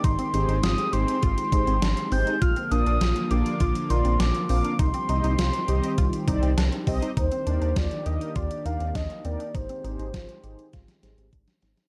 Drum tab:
HH |xxxxxxxxxxxxxxox|xxxxxxxxxxxxxxox|xxxxxxxxxxxxxxox|xxxxxxxxxxxxxxxx|
SD |----o-------o---|----o-------o---|----o-------o---|----o-------o---|
BD |o-------o-o-----|o-------o-------|o-------o-o---o-|o---o---o---o---|

HH |xxxxxxxxxxxxxxxx|
SD |----o---ooo--ooo|
BD |o---o---o---o---|